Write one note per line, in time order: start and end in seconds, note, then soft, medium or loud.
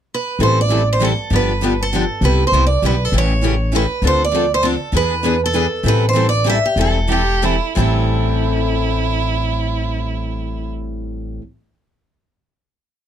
0.14 0.42 B4 medium
0.39 1.12 A1 medium
0.39 0.59 E3 medium
0.39 0.60 G3 medium
0.39 0.59 C4 medium
0.39 0.60 E4 medium
0.39 0.60 A4 medium
0.43 0.58 C5 medium
0.61 0.88 D5 medium
0.69 0.80 E3 medium
0.69 0.80 G3 medium
0.69 0.81 C4 medium
0.69 0.81 E4 medium
0.69 0.81 A4 medium
0.93 1.03 C5 medium
1.00 1.11 E3 medium
1.00 1.11 G3 medium
1.00 1.11 C4 medium
1.00 1.11 E4 medium
1.00 1.11 A4 medium
1.05 1.34 A4 medium
1.30 2.03 G1 medium
1.30 1.50 D3 medium
1.30 1.50 F3 medium
1.30 1.50 B3 medium
1.30 1.50 D4 medium
1.30 1.51 G4 medium
1.36 1.83 B4 medium
1.61 1.72 D3 medium
1.61 1.72 F3 medium
1.61 1.72 B3 medium
1.61 1.72 D4 medium
1.61 1.72 G4 medium
1.83 2.24 A4 medium
1.93 2.03 D3 medium
1.93 2.03 F3 medium
1.93 2.03 B3 medium
1.93 2.03 D4 medium
1.93 2.03 G4 medium
2.21 2.45 C2 medium
2.21 2.41 C3 medium
2.21 2.41 G3 medium
2.21 2.41 B3 medium
2.21 2.41 E4 medium
2.21 2.42 G4 medium
2.21 2.44 B4 medium
2.47 2.65 C5 medium
2.52 2.77 C2 medium
2.52 2.63 C3 medium
2.52 2.63 G3 medium
2.52 2.63 B3 medium
2.52 2.64 E4 medium
2.52 2.63 G4 medium
2.67 2.85 D5 medium
2.82 3.08 B1 medium
2.82 2.93 C3 medium
2.82 2.93 G3 medium
2.82 2.93 B3 medium
2.82 2.93 E4 medium
2.82 2.94 G4 medium
2.82 3.05 B4 medium
3.05 3.15 A4 medium
3.12 3.85 A1 medium
3.12 3.32 C#3 medium
3.12 3.32 E3 medium
3.12 3.32 G3 medium
3.12 3.33 A3 medium
3.12 3.33 C#4 medium
3.12 3.33 E4 medium
3.12 3.32 G4 medium
3.12 3.33 A4 medium
3.18 3.76 C#5 medium
3.41 3.54 C#3 medium
3.41 3.53 E3 medium
3.41 3.53 G3 medium
3.41 3.54 A3 medium
3.41 3.53 C#4 medium
3.41 3.53 E4 medium
3.41 3.54 G4 medium
3.41 3.53 A4 medium
3.72 3.84 C#3 medium
3.72 3.83 E3 medium
3.72 3.83 G3 medium
3.72 3.84 A3 medium
3.72 3.83 C#4 medium
3.72 3.84 E4 medium
3.72 3.85 G4 medium
3.72 3.83 A4 medium
3.76 4.02 B4 medium
4.02 4.75 D2 medium
4.02 4.22 D3 medium
4.02 4.22 F3 medium
4.02 4.22 C4 medium
4.02 4.22 D4 medium
4.02 4.23 A4 medium
4.07 4.23 C5 medium
4.25 4.51 D5 medium
4.31 4.43 D3 medium
4.31 4.43 F3 medium
4.31 4.43 C4 medium
4.31 4.43 D4 medium
4.31 4.43 A4 medium
4.54 4.64 C5 medium
4.63 4.74 D3 medium
4.63 4.74 F3 medium
4.63 4.74 C4 medium
4.63 4.74 D4 medium
4.63 4.74 A4 medium
4.63 4.95 A4 medium
4.92 5.65 E2 medium
4.92 5.12 E3 medium
4.92 5.12 B3 medium
4.92 5.13 D4 medium
4.92 5.13 G#4 medium
4.92 5.13 B4 medium
4.97 5.40 B4 medium
5.23 5.34 E3 medium
5.23 5.34 B3 medium
5.23 5.34 D4 medium
5.23 5.34 G#4 medium
5.23 5.34 B4 medium
5.46 5.87 A4 medium
5.53 5.64 E3 medium
5.53 5.64 B3 medium
5.53 5.65 D4 medium
5.53 5.64 G#4 medium
5.53 5.65 B4 medium
5.83 6.58 A1 medium
5.83 6.03 E3 medium
5.83 6.03 G3 medium
5.83 6.04 C4 medium
5.83 6.04 E4 medium
5.83 6.04 A4 medium
5.88 6.05 B4 medium
6.09 6.27 C5 medium
6.13 6.25 E3 medium
6.13 6.25 G3 medium
6.13 6.25 C4 medium
6.13 6.25 E4 medium
6.13 6.25 A4 medium
6.29 6.46 D5 medium
6.44 6.56 E3 medium
6.44 6.56 G3 medium
6.44 6.56 C4 medium
6.44 6.56 E4 medium
6.44 6.56 A4 medium
6.49 6.67 E5 medium
6.65 6.78 G4 medium
6.76 7.57 E1 medium
6.76 6.97 E3 medium
6.76 6.98 G3 medium
6.76 6.98 C4 medium
6.76 6.98 E4 medium
6.76 6.98 A4 medium
6.81 7.40 A4 medium
7.07 7.20 E3 medium
7.07 7.20 G3 medium
7.07 7.20 C4 medium
7.07 7.21 E4 medium
7.07 7.46 G4 medium
7.07 7.21 A4 medium
7.42 7.54 E3 medium
7.42 7.55 G3 medium
7.42 7.55 C4 medium
7.42 7.55 E4 medium
7.42 7.78 E4 medium
7.42 7.55 A4 medium
7.77 11.37 A1 medium
7.77 11.42 A2 medium
7.77 11.42 E3 medium
7.77 11.42 G3 medium
7.77 11.43 C4 medium
7.77 10.69 E4 medium
7.77 11.43 E4 medium
7.77 11.43 A4 medium